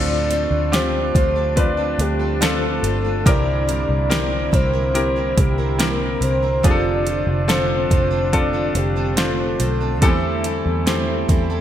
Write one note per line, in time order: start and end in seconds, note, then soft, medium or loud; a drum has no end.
0.00 0.47 D2 loud
0.00 1.10 A2 medium
0.00 0.31 D3 medium
0.00 11.61 D3 medium
0.00 3.23 F3 medium
0.00 0.29 A3 medium
0.00 3.23 A3 medium
0.00 0.30 C4 loud
0.00 0.68 C4 medium
0.00 0.68 D4 medium
0.00 3.23 D4 medium
0.00 0.31 F4 medium
0.00 0.68 F4 medium
0.00 0.31 A4 loud
0.00 0.68 A4 medium
0.00 0.76 D5 loud
0.31 0.71 A3 medium
0.31 0.72 C4 medium
0.31 0.72 F4 medium
0.31 0.72 A4 medium
0.31 closed hi-hat medium
0.51 1.10 D2 medium
0.72 1.15 D3 medium
0.72 1.13 A3 medium
0.72 1.52 C4 medium
0.72 1.14 C4 medium
0.72 1.52 D4 medium
0.72 1.53 F4 medium
0.72 1.15 F4 medium
0.72 1.53 G4 medium
0.72 1.15 A4 medium
0.72 1.16 C5 loud
0.72 snare loud
0.72 closed hi-hat medium
1.15 1.95 D2 medium
1.15 1.36 A3 medium
1.15 1.36 C4 medium
1.15 1.35 F4 medium
1.15 1.34 A4 medium
1.15 1.55 C5 loud
1.15 kick loud
1.15 closed hi-hat medium
1.36 1.78 C4 soft
1.36 1.77 F4 medium
1.36 1.76 A4 medium
1.56 2.37 C4 medium
1.56 2.37 D4 medium
1.56 2.37 F4 medium
1.56 2.37 B4 medium
1.56 2.02 D5 loud
1.56 kick medium
1.56 closed hi-hat medium
1.77 2.20 C4 soft
1.77 2.19 F4 medium
1.77 2.18 A4 medium
1.99 2.79 D2 loud
1.99 2.44 G4 loud
1.99 closed hi-hat medium
2.19 2.40 C4 soft
2.19 2.40 F4 medium
2.19 2.41 A4 medium
2.41 2.83 D3 medium
2.41 2.82 A3 medium
2.41 3.21 C4 medium
2.41 2.83 C4 medium
2.41 3.21 D4 medium
2.41 3.22 F4 medium
2.41 2.84 F4 medium
2.41 3.22 A4 medium
2.41 2.84 A4 loud
2.41 3.29 A4 loud
2.41 snare loud
2.41 closed hi-hat loud
2.83 3.22 G1 medium
2.83 3.05 A3 medium
2.83 3.05 C4 medium
2.83 3.04 F4 medium
2.83 3.03 A4 medium
2.83 closed hi-hat medium
3.04 3.25 C4 soft
3.04 3.26 F4 medium
3.04 3.26 A4 medium
3.26 3.85 C2 loud
3.26 4.49 G2 medium
3.26 3.68 C3 medium
3.26 3.68 E3 loud
3.26 3.66 G3 medium
3.26 6.61 G3 medium
3.26 6.61 A#3 medium
3.26 4.06 C4 medium
3.26 3.67 C4 medium
3.26 4.06 E4 medium
3.26 6.61 E4 medium
3.26 3.68 E4 loud
3.26 4.06 G4 medium
3.26 4.06 A#4 medium
3.26 3.68 A#4 loud
3.26 4.56 D5 loud
3.26 kick loud
3.26 closed hi-hat loud
3.67 4.10 G3 medium
3.67 4.10 C4 medium
3.67 4.10 E4 medium
3.67 4.10 A#4 medium
3.67 closed hi-hat medium
3.89 4.48 C2 medium
4.10 4.53 C3 medium
4.10 4.53 E3 medium
4.10 4.51 G3 medium
4.10 4.90 C4 medium
4.10 4.51 C4 medium
4.10 4.90 E4 medium
4.10 4.52 E4 medium
4.10 4.90 G4 medium
4.10 4.91 A#4 medium
4.10 4.53 A#4 medium
4.10 snare loud
4.10 closed hi-hat medium
4.52 5.33 C2 loud
4.52 4.73 G3 medium
4.52 4.74 C4 medium
4.52 4.73 E4 medium
4.52 4.72 A#4 medium
4.52 5.41 C5 loud
4.52 kick loud
4.52 closed hi-hat medium
4.73 5.17 G3 soft
4.73 5.16 C4 medium
4.73 5.15 E4 medium
4.73 5.15 A#4 medium
4.94 5.75 C4 medium
4.94 5.75 E4 medium
4.94 5.75 G4 medium
4.94 5.75 A#4 medium
4.94 closed hi-hat medium
5.16 5.59 G3 soft
5.16 5.58 C4 medium
5.16 5.57 E4 medium
5.16 5.57 A#4 medium
5.37 6.18 C2 loud
5.37 5.83 G4 medium
5.37 kick loud
5.37 closed hi-hat medium
5.58 5.79 G3 soft
5.58 5.79 C4 medium
5.58 5.79 E4 medium
5.58 5.79 A#4 medium
5.79 6.22 C3 medium
5.79 6.22 E3 medium
5.79 6.20 G3 medium
5.79 6.59 C4 medium
5.79 6.21 C4 medium
5.79 6.60 E4 medium
5.79 6.21 E4 medium
5.79 6.60 G4 medium
5.79 6.60 A#4 medium
5.79 6.22 A#4 medium
5.79 6.23 A#4 loud
5.79 snare loud
5.79 closed hi-hat loud
6.21 6.61 C2 medium
6.21 6.42 G3 medium
6.21 6.43 C4 medium
6.21 6.42 E4 medium
6.21 6.41 A#4 medium
6.21 6.67 C5 loud
6.21 closed hi-hat medium
6.43 6.63 G3 soft
6.43 6.63 C4 medium
6.43 6.64 E4 medium
6.43 6.64 A#4 medium
6.63 7.23 F1 loud
6.63 7.87 C3 medium
6.63 7.06 D3 medium
6.63 7.06 F3 medium
6.63 9.99 F3 medium
6.63 11.61 A3 medium
6.63 7.44 C4 medium
6.63 7.04 C4 medium
6.63 7.44 D4 medium
6.63 9.99 D4 medium
6.63 7.05 F4 medium
6.63 7.44 F4 medium
6.63 6.71 G#4 medium
6.63 7.06 A4 loud
6.63 7.06 C5 loud
6.63 7.49 D5 loud
6.63 kick loud
6.63 closed hi-hat loud
6.71 7.47 A4 medium
7.05 7.47 C4 medium
7.05 7.47 F4 medium
7.05 7.48 A4 medium
7.05 7.47 C5 medium
7.05 closed hi-hat medium
7.27 7.86 F1 loud
7.48 7.90 D3 medium
7.48 7.90 F3 medium
7.48 8.28 C4 medium
7.48 7.89 C4 medium
7.48 8.29 D4 medium
7.48 8.29 F4 medium
7.48 7.90 F4 medium
7.48 8.29 A4 medium
7.48 7.91 A4 medium
7.48 7.90 C5 loud
7.48 8.35 C5 loud
7.48 snare loud
7.48 closed hi-hat medium
7.90 8.71 F1 loud
7.90 8.11 C4 medium
7.90 8.11 F4 medium
7.90 8.09 A4 medium
7.90 8.10 C5 medium
7.90 kick medium
7.90 closed hi-hat medium
8.11 8.54 C4 medium
8.11 8.53 F4 medium
8.11 8.52 A4 medium
8.11 8.53 C5 medium
8.33 9.13 C4 medium
8.33 9.13 D4 medium
8.33 9.13 F4 medium
8.33 9.13 A4 medium
8.33 8.78 D5 loud
8.33 kick medium
8.33 closed hi-hat medium
8.53 8.97 C4 soft
8.53 8.96 F4 medium
8.53 8.95 A4 medium
8.53 8.95 C5 medium
8.75 9.56 F1 loud
8.75 9.20 G4 medium
8.75 closed hi-hat medium
8.96 9.17 C4 medium
8.96 9.17 F4 medium
8.96 9.17 A4 medium
8.96 9.17 C5 medium
9.17 9.60 D3 medium
9.17 9.60 F3 medium
9.17 9.97 C4 medium
9.17 9.58 C4 medium
9.17 9.97 D4 medium
9.17 9.98 F4 medium
9.17 9.59 F4 medium
9.17 9.60 A4 medium
9.17 9.98 C5 medium
9.17 9.59 C5 medium
9.17 snare loud
9.17 closed hi-hat loud
9.59 10.02 B1 medium
9.59 9.81 C4 medium
9.59 9.81 F4 medium
9.59 9.99 A4 medium
9.59 9.79 A4 medium
9.59 9.80 C5 medium
9.59 closed hi-hat medium
9.80 10.01 C4 soft
9.80 10.02 F4 soft
9.80 10.02 A4 medium
9.80 10.02 C5 medium
10.01 10.61 E2 loud
10.01 11.25 E3 medium
10.01 10.44 E3 medium
10.01 10.43 G3 loud
10.01 11.61 G3 medium
10.01 10.44 A3 medium
10.01 10.08 B3 medium
10.01 10.44 C4 loud
10.01 10.82 E4 medium
10.01 11.61 E4 medium
10.01 10.44 E4 loud
10.01 10.82 G4 medium
10.01 11.61 A4 loud
10.01 10.82 A4 medium
10.01 10.45 A4 loud
10.01 kick loud
10.01 closed hi-hat loud
10.08 10.85 C4 medium
10.44 10.86 G3 medium
10.44 10.86 C4 medium
10.44 10.86 E4 medium
10.44 10.86 A4 medium
10.44 closed hi-hat medium
10.66 11.25 E2 loud
10.86 11.29 E3 medium
10.86 11.27 G3 medium
10.86 11.29 A3 medium
10.86 11.61 C4 medium
10.86 11.28 C4 medium
10.86 11.61 E4 medium
10.86 11.29 E4 medium
10.86 11.61 G4 medium
10.86 11.29 A4 medium
10.86 11.61 C5 medium
10.86 snare loud
10.86 closed hi-hat medium
11.28 11.61 E2 medium
11.28 11.50 G3 medium
11.28 11.50 C4 medium
11.28 11.49 E4 medium
11.28 11.49 A4 medium
11.28 kick loud
11.28 closed hi-hat medium
11.50 11.61 G3 medium
11.50 11.61 C4 medium
11.50 11.61 E4 medium
11.50 11.61 A4 medium